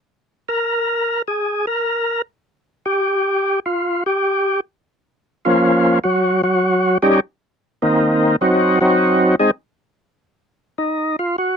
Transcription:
0, 0, Header, 1, 2, 480
1, 0, Start_track
1, 0, Tempo, 594059
1, 51, Time_signature, 4, 2, 24, 8
1, 9346, End_track
2, 0, Start_track
2, 0, Title_t, "Tonewheel organ"
2, 0, Program_c, 0, 16
2, 392, Note_on_c, 0, 70, 94
2, 988, Note_off_c, 0, 70, 0
2, 1031, Note_on_c, 0, 68, 67
2, 1338, Note_off_c, 0, 68, 0
2, 1350, Note_on_c, 0, 70, 90
2, 1793, Note_off_c, 0, 70, 0
2, 2308, Note_on_c, 0, 67, 85
2, 2906, Note_off_c, 0, 67, 0
2, 2955, Note_on_c, 0, 65, 74
2, 3261, Note_off_c, 0, 65, 0
2, 3283, Note_on_c, 0, 67, 86
2, 3719, Note_off_c, 0, 67, 0
2, 4404, Note_on_c, 0, 65, 80
2, 4408, Note_on_c, 0, 61, 62
2, 4414, Note_on_c, 0, 53, 66
2, 4414, Note_on_c, 0, 58, 63
2, 4837, Note_off_c, 0, 65, 0
2, 4839, Note_off_c, 0, 61, 0
2, 4842, Note_off_c, 0, 53, 0
2, 4842, Note_off_c, 0, 58, 0
2, 4877, Note_on_c, 0, 66, 73
2, 4886, Note_on_c, 0, 54, 57
2, 5182, Note_off_c, 0, 66, 0
2, 5187, Note_off_c, 0, 54, 0
2, 5199, Note_on_c, 0, 54, 65
2, 5199, Note_on_c, 0, 66, 76
2, 5638, Note_off_c, 0, 54, 0
2, 5638, Note_off_c, 0, 66, 0
2, 5675, Note_on_c, 0, 67, 97
2, 5676, Note_on_c, 0, 55, 80
2, 5677, Note_on_c, 0, 63, 77
2, 5680, Note_on_c, 0, 61, 79
2, 5818, Note_off_c, 0, 67, 0
2, 5819, Note_off_c, 0, 55, 0
2, 5819, Note_off_c, 0, 63, 0
2, 5821, Note_off_c, 0, 61, 0
2, 6320, Note_on_c, 0, 60, 46
2, 6320, Note_on_c, 0, 63, 61
2, 6321, Note_on_c, 0, 58, 48
2, 6327, Note_on_c, 0, 51, 44
2, 6755, Note_off_c, 0, 60, 0
2, 6755, Note_off_c, 0, 63, 0
2, 6756, Note_off_c, 0, 58, 0
2, 6759, Note_off_c, 0, 51, 0
2, 6795, Note_on_c, 0, 60, 58
2, 6798, Note_on_c, 0, 54, 63
2, 6800, Note_on_c, 0, 63, 59
2, 6801, Note_on_c, 0, 66, 77
2, 7101, Note_off_c, 0, 60, 0
2, 7103, Note_off_c, 0, 54, 0
2, 7104, Note_off_c, 0, 63, 0
2, 7104, Note_off_c, 0, 66, 0
2, 7115, Note_on_c, 0, 66, 82
2, 7121, Note_on_c, 0, 54, 68
2, 7121, Note_on_c, 0, 60, 65
2, 7124, Note_on_c, 0, 63, 66
2, 7556, Note_off_c, 0, 66, 0
2, 7558, Note_off_c, 0, 60, 0
2, 7559, Note_off_c, 0, 54, 0
2, 7560, Note_off_c, 0, 63, 0
2, 7591, Note_on_c, 0, 63, 79
2, 7591, Note_on_c, 0, 68, 94
2, 7595, Note_on_c, 0, 56, 74
2, 7598, Note_on_c, 0, 60, 77
2, 7680, Note_off_c, 0, 68, 0
2, 7681, Note_off_c, 0, 63, 0
2, 7684, Note_off_c, 0, 56, 0
2, 7685, Note_off_c, 0, 60, 0
2, 8712, Note_on_c, 0, 63, 70
2, 9019, Note_off_c, 0, 63, 0
2, 9042, Note_on_c, 0, 65, 83
2, 9181, Note_off_c, 0, 65, 0
2, 9197, Note_on_c, 0, 66, 70
2, 9346, Note_off_c, 0, 66, 0
2, 9346, End_track
0, 0, End_of_file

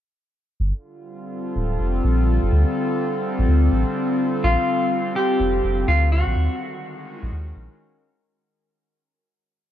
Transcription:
0, 0, Header, 1, 4, 480
1, 0, Start_track
1, 0, Tempo, 480000
1, 599, Time_signature, 4, 2, 24, 8
1, 9716, End_track
2, 0, Start_track
2, 0, Title_t, "Clean electric guitar"
2, 0, Program_c, 0, 27
2, 4441, Note_on_c, 0, 65, 103
2, 5157, Note_off_c, 0, 65, 0
2, 5161, Note_on_c, 0, 67, 106
2, 5877, Note_off_c, 0, 67, 0
2, 5881, Note_on_c, 0, 65, 97
2, 6103, Note_off_c, 0, 65, 0
2, 6121, Note_on_c, 0, 66, 98
2, 7201, Note_off_c, 0, 66, 0
2, 7201, Note_on_c, 0, 64, 98
2, 7760, Note_off_c, 0, 64, 0
2, 9716, End_track
3, 0, Start_track
3, 0, Title_t, "Ambient pad"
3, 0, Program_c, 1, 92
3, 598, Note_on_c, 1, 50, 76
3, 765, Note_on_c, 1, 65, 90
3, 821, Note_on_c, 1, 55, 86
3, 1003, Note_on_c, 1, 60, 84
3, 1117, Note_on_c, 1, 69, 88
3, 6358, Note_off_c, 1, 50, 0
3, 6359, Note_off_c, 1, 60, 0
3, 6359, Note_off_c, 1, 65, 0
3, 6359, Note_off_c, 1, 69, 0
3, 6360, Note_off_c, 1, 55, 0
3, 6360, Note_on_c, 1, 51, 74
3, 6554, Note_on_c, 1, 66, 82
3, 6577, Note_on_c, 1, 56, 77
3, 6930, Note_on_c, 1, 61, 74
3, 7248, Note_on_c, 1, 70, 69
3, 8279, Note_off_c, 1, 51, 0
3, 8279, Note_off_c, 1, 56, 0
3, 8279, Note_off_c, 1, 61, 0
3, 8279, Note_off_c, 1, 66, 0
3, 8280, Note_off_c, 1, 70, 0
3, 9716, End_track
4, 0, Start_track
4, 0, Title_t, "Sub bass"
4, 0, Program_c, 2, 38
4, 599, Note_on_c, 2, 31, 101
4, 723, Note_off_c, 2, 31, 0
4, 1558, Note_on_c, 2, 26, 102
4, 1768, Note_off_c, 2, 26, 0
4, 1799, Note_on_c, 2, 29, 91
4, 2009, Note_off_c, 2, 29, 0
4, 2039, Note_on_c, 2, 34, 104
4, 2388, Note_off_c, 2, 34, 0
4, 2427, Note_on_c, 2, 31, 111
4, 2503, Note_off_c, 2, 31, 0
4, 2520, Note_on_c, 2, 38, 101
4, 2643, Note_off_c, 2, 38, 0
4, 3388, Note_on_c, 2, 33, 90
4, 3464, Note_off_c, 2, 33, 0
4, 3480, Note_on_c, 2, 38, 87
4, 3689, Note_off_c, 2, 38, 0
4, 3719, Note_on_c, 2, 33, 79
4, 3843, Note_off_c, 2, 33, 0
4, 4438, Note_on_c, 2, 34, 101
4, 4563, Note_off_c, 2, 34, 0
4, 5398, Note_on_c, 2, 29, 97
4, 5608, Note_off_c, 2, 29, 0
4, 5638, Note_on_c, 2, 29, 95
4, 5848, Note_off_c, 2, 29, 0
4, 5878, Note_on_c, 2, 38, 103
4, 6227, Note_off_c, 2, 38, 0
4, 6267, Note_on_c, 2, 34, 109
4, 6343, Note_off_c, 2, 34, 0
4, 6358, Note_on_c, 2, 39, 100
4, 6482, Note_off_c, 2, 39, 0
4, 7227, Note_on_c, 2, 34, 89
4, 7303, Note_off_c, 2, 34, 0
4, 7319, Note_on_c, 2, 39, 83
4, 7528, Note_off_c, 2, 39, 0
4, 7559, Note_on_c, 2, 34, 84
4, 7683, Note_off_c, 2, 34, 0
4, 9716, End_track
0, 0, End_of_file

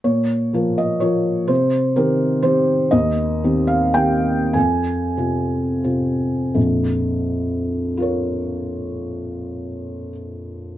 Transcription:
0, 0, Header, 1, 2, 480
1, 0, Start_track
1, 0, Tempo, 480000
1, 42, Time_signature, 3, 2, 24, 8
1, 2920, Tempo, 518583
1, 3880, Tempo, 583090
1, 4360, Tempo, 652174
1, 5320, Tempo, 711744
1, 8647, End_track
2, 0, Start_track
2, 0, Title_t, "Felt piano"
2, 0, Program_c, 0, 0
2, 41, Note_on_c, 0, 46, 43
2, 42, Note_on_c, 0, 73, 55
2, 217, Control_c, 0, 64, 127
2, 525, Note_off_c, 0, 46, 0
2, 533, Note_on_c, 0, 53, 34
2, 542, Note_on_c, 0, 65, 34
2, 544, Note_on_c, 0, 70, 36
2, 778, Note_on_c, 0, 75, 56
2, 782, Note_off_c, 0, 73, 0
2, 976, Note_off_c, 0, 53, 0
2, 980, Note_off_c, 0, 65, 0
2, 981, Note_off_c, 0, 70, 0
2, 1002, Note_on_c, 0, 73, 64
2, 1014, Note_on_c, 0, 53, 36
2, 1016, Note_on_c, 0, 65, 34
2, 1017, Note_off_c, 0, 75, 0
2, 1021, Note_on_c, 0, 70, 37
2, 1450, Note_off_c, 0, 53, 0
2, 1451, Note_off_c, 0, 65, 0
2, 1453, Note_off_c, 0, 70, 0
2, 1476, Note_on_c, 0, 72, 71
2, 1481, Note_on_c, 0, 48, 51
2, 1484, Note_off_c, 0, 73, 0
2, 1511, Control_c, 0, 64, 0
2, 1679, Control_c, 0, 64, 127
2, 1949, Note_off_c, 0, 48, 0
2, 1960, Note_on_c, 0, 70, 72
2, 1961, Note_off_c, 0, 72, 0
2, 1966, Note_on_c, 0, 60, 41
2, 1971, Note_on_c, 0, 67, 45
2, 1973, Note_on_c, 0, 51, 41
2, 2400, Note_off_c, 0, 60, 0
2, 2402, Note_off_c, 0, 67, 0
2, 2403, Note_off_c, 0, 51, 0
2, 2425, Note_on_c, 0, 72, 75
2, 2433, Note_on_c, 0, 51, 42
2, 2437, Note_off_c, 0, 70, 0
2, 2439, Note_on_c, 0, 60, 42
2, 2449, Note_on_c, 0, 67, 47
2, 2877, Note_off_c, 0, 51, 0
2, 2880, Note_off_c, 0, 60, 0
2, 2885, Note_off_c, 0, 67, 0
2, 2910, Note_on_c, 0, 75, 78
2, 2913, Note_off_c, 0, 72, 0
2, 2924, Note_on_c, 0, 39, 54
2, 2940, Control_c, 0, 64, 0
2, 3080, Control_c, 0, 64, 127
2, 3375, Note_off_c, 0, 39, 0
2, 3402, Note_on_c, 0, 51, 41
2, 3403, Note_on_c, 0, 60, 43
2, 3407, Note_on_c, 0, 67, 41
2, 3617, Note_on_c, 0, 77, 65
2, 3625, Note_off_c, 0, 75, 0
2, 3851, Note_off_c, 0, 51, 0
2, 3852, Note_off_c, 0, 60, 0
2, 3854, Note_off_c, 0, 67, 0
2, 3864, Note_on_c, 0, 79, 76
2, 3866, Note_on_c, 0, 51, 34
2, 3872, Note_on_c, 0, 60, 37
2, 3875, Note_off_c, 0, 77, 0
2, 3881, Note_on_c, 0, 67, 42
2, 4321, Note_off_c, 0, 51, 0
2, 4324, Note_off_c, 0, 60, 0
2, 4328, Note_off_c, 0, 67, 0
2, 4353, Note_off_c, 0, 79, 0
2, 4355, Note_on_c, 0, 80, 60
2, 4364, Note_on_c, 0, 41, 40
2, 4376, Control_c, 0, 64, 0
2, 4558, Control_c, 0, 64, 127
2, 4815, Note_off_c, 0, 41, 0
2, 4823, Note_on_c, 0, 48, 33
2, 4826, Note_on_c, 0, 60, 30
2, 4835, Note_on_c, 0, 65, 34
2, 5288, Note_off_c, 0, 48, 0
2, 5290, Note_off_c, 0, 60, 0
2, 5294, Note_off_c, 0, 65, 0
2, 5317, Note_off_c, 0, 80, 0
2, 5317, Note_on_c, 0, 48, 32
2, 5318, Note_on_c, 0, 60, 32
2, 5320, Note_on_c, 0, 65, 31
2, 5766, Note_off_c, 0, 48, 0
2, 5766, Note_off_c, 0, 60, 0
2, 5767, Note_off_c, 0, 65, 0
2, 5792, Note_on_c, 0, 41, 45
2, 5794, Note_on_c, 0, 34, 41
2, 5814, Control_c, 0, 64, 0
2, 5977, Control_c, 0, 64, 127
2, 6756, Note_on_c, 0, 65, 40
2, 6775, Note_on_c, 0, 70, 38
2, 6788, Note_on_c, 0, 73, 36
2, 8190, Note_off_c, 0, 41, 0
2, 8192, Note_off_c, 0, 34, 0
2, 8647, Note_off_c, 0, 65, 0
2, 8647, Note_off_c, 0, 70, 0
2, 8647, Note_off_c, 0, 73, 0
2, 8647, End_track
0, 0, End_of_file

